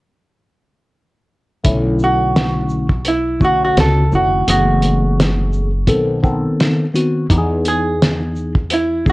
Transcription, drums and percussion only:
1.64 kick medium
1.64 closed hi-hat medium
1.99 shaker soft
2.36 snare loud
2.36 closed hi-hat medium
2.69 shaker medium
2.89 kick medium
3.05 closed hi-hat medium
3.41 kick medium
3.41 shaker soft
3.77 snare loud
3.77 closed hi-hat medium
4.12 shaker soft
4.48 closed hi-hat medium
4.82 closed hi-hat medium
4.82 shaker medium
5.20 snare loud
5.20 closed hi-hat medium
5.53 shaker medium
5.87 kick medium
5.87 closed hi-hat medium
6.24 kick medium
6.24 shaker soft
6.60 snare loud
6.60 closed hi-hat medium
6.96 closed hi-hat soft
6.96 shaker soft
7.30 kick loud
7.30 closed hi-hat medium
7.65 closed hi-hat medium
7.65 shaker medium
8.02 snare loud
8.02 closed hi-hat medium
8.36 shaker medium
8.55 kick medium
8.70 closed hi-hat medium
9.06 kick medium
9.06 shaker soft

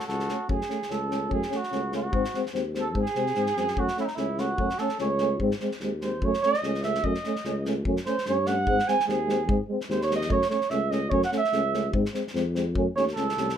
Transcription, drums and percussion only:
0.09 snare soft
0.20 snare soft
0.29 snare soft
0.49 kick medium
0.61 snare soft
0.70 snare soft
0.82 snare soft
0.91 snare soft
1.11 snare soft
1.31 kick medium
1.42 snare soft
1.52 snare soft
1.63 snare soft
1.72 snare soft
1.92 snare soft
2.13 kick medium
2.25 snare soft
2.34 snare soft
2.46 snare soft
2.55 snare soft
2.75 snare soft
2.95 kick medium
3.06 snare soft
3.15 snare soft
3.26 snare soft
3.35 snare soft
3.46 snare soft
3.57 snare soft
3.68 snare soft
3.77 kick medium
3.88 snare soft
3.97 snare soft
4.08 snare soft
4.17 snare soft
4.38 snare soft
4.58 kick medium
4.70 snare soft
4.78 snare soft
4.89 snare soft
4.99 snare soft
5.18 snare soft
5.40 kick medium
5.51 snare soft
5.60 snare soft
5.72 snare soft
5.80 snare soft
6.01 snare soft
6.22 kick medium
6.34 snare soft
6.43 snare soft
6.54 snare soft
6.63 snare soft
6.75 snare soft
6.83 snare soft
6.95 snare soft
7.04 kick medium
7.15 snare soft
7.24 snare soft
7.36 snare soft
7.45 snare soft
7.65 snare soft
7.85 kick medium
7.97 snare soft
8.06 snare soft
8.18 snare soft
8.26 snare soft
8.46 snare soft
8.67 kick medium
8.79 snare soft
8.88 snare soft
9.00 snare soft
9.09 snare soft
9.29 snare soft
9.49 kick medium
9.81 snare soft
9.90 snare soft
10.02 snare soft
10.11 snare soft
10.21 snare soft
10.30 kick medium
10.42 snare soft
10.51 snare soft
10.61 snare soft
10.70 snare soft
10.92 snare soft
11.11 kick medium
11.23 snare soft
11.32 snare soft
11.45 snare soft
11.52 snare soft
11.74 snare soft
11.94 kick medium
12.05 snare soft
12.15 snare soft
12.27 snare soft
12.36 snare soft
12.55 snare soft
12.75 kick medium
12.97 snare soft
13.08 snare soft
13.16 snare soft
13.29 snare soft
13.38 snare soft
13.49 snare soft

